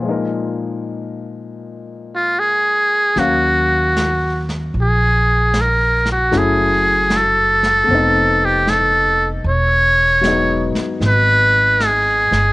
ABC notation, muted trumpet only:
X:1
M:4/4
L:1/8
Q:"Swing" 1/4=76
K:Ebm
V:1 name="Muted trumpet"
z4 z F A2 | G3 z A2 B G | A2 =A3 =G A z | d3 z =B2 ^G2 |]